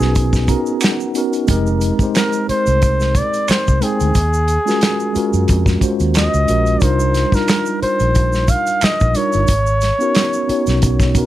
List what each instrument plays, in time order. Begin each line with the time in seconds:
Already playing: tine electric piano B3 C#4 D#4 F#4 A#4 B4, flugelhorn G#4
0.00 fingered electric bass B1, snare, shaker
0.15 kick, closed hi-hat, shaker
0.33 kick, snare, shaker
0.47 tine electric piano B3 C#4 D#4 F#4 A#5, kick, closed hi-hat, shaker
0.51 tine electric piano A#4
0.66 shaker
0.81 tine electric piano F#5, finger snap, snare, closed hi-hat, shaker
1.00 shaker
1.14 tine electric piano B3 C#4 D#4 F#4 A#4, closed hi-hat, shaker
1.33 closed hi-hat, shaker
1.47 fingered electric bass F1, tine electric piano G#3 C4 D#4 G4 A#4, kick, closed hi-hat, shaker
1.67 shaker
1.81 closed hi-hat, shaker
1.99 tine electric piano G#3 C4 D#4 G4 C5, kick, closed hi-hat, shaker
2.15 flugelhorn A#4, finger snap, snare, closed hi-hat, shaker
2.33 shaker
2.49 flugelhorn C5, muted fingered electric bass stroke, closed hi-hat
2.66 fingered electric bass C2, closed hi-hat, shaker
2.82 kick, closed hi-hat, shaker
3.00 snare, shaker
3.15 flugelhorn D5, kick, closed hi-hat, shaker
3.34 closed hi-hat, shaker
3.48 flugelhorn C5, finger snap, muted fingered electric bass stroke, snare, closed hi-hat, shaker
3.68 fingered electric bass C2, kick, shaker
3.80 tine electric piano G#3 C4 D#4 C5 G5, closed hi-hat, shaker
3.84 flugelhorn G#4
4.00 fingered electric bass D2, closed hi-hat, shaker
4.15 fingered electric bass D#2, kick, closed hi-hat, shaker
4.34 shaker
4.48 closed hi-hat, shaker
4.65 tine electric piano G#3 C#4 F4 F#4 A#4, shaker
4.70 snare
4.81 finger snap, snare, closed hi-hat, shaker
5.00 shaker
5.13 tine electric piano G#3 C#4 F4 F#4 A#4, muted fingered electric bass stroke, closed hi-hat, shaker
5.33 fingered electric bass F#2, shaker
5.48 fingered electric bass F2, kick, closed hi-hat, shaker
5.66 kick, snare, shaker
5.80 tine electric piano G#3 C#4 F4 F#4 C5, muted fingered electric bass stroke, kick, closed hi-hat, shaker
6.00 fingered electric bass D#2, closed hi-hat, shaker
6.14 flugelhorn D#5, finger snap, snare, closed hi-hat, shaker
6.34 fingered electric bass C#2, shaker
6.46 fingered electric bass A#1, tine electric piano G#3 C#4 F4 F#4, closed hi-hat, shaker
6.50 tine electric piano A#4
6.66 closed hi-hat, shaker
6.79 fingered electric bass C2, tine electric piano G3 D4 D#4 F4 A#4, kick, closed hi-hat, shaker
6.83 flugelhorn C5
7.00 shaker
7.14 snare, closed hi-hat, shaker
7.31 tine electric piano G3 D4 D#4 F4, flugelhorn A#4, kick, shaker
7.35 tine electric piano A#4, snare
7.48 finger snap, snare, closed hi-hat, shaker
7.66 shaker
7.82 flugelhorn C5, muted fingered electric bass stroke, closed hi-hat
8.00 fingered electric bass A#1, closed hi-hat, shaker
8.15 kick, closed hi-hat, shaker
8.33 snare, shaker
8.48 flugelhorn F5, kick, closed hi-hat, shaker
8.66 closed hi-hat, shaker
8.81 flugelhorn D#5, finger snap, muted fingered electric bass stroke, snare, closed hi-hat, shaker
9.00 fingered electric bass A#1, kick, shaker
9.14 tine electric piano G3 D4 D#4 F4 A#4, flugelhorn C#5, closed hi-hat, shaker
9.32 fingered electric bass G1, closed hi-hat, shaker
9.47 fingered electric bass G#1, kick, closed hi-hat, shaker
9.66 shaker
9.81 snare, closed hi-hat, shaker
9.99 tine electric piano B3 C#4 D#4 F#4 A#4, shaker
10.15 finger snap, snare, closed hi-hat, shaker
10.33 shaker
10.48 tine electric piano B3 C#4 D#4 F#4 C#5, muted fingered electric bass stroke, closed hi-hat
10.67 fingered electric bass B1, snare, closed hi-hat, shaker
10.82 kick, closed hi-hat, shaker
11.00 kick, snare, shaker
11.14 tine electric piano B3 C#4 D#4 F#4 A#4, kick, closed hi-hat, shaker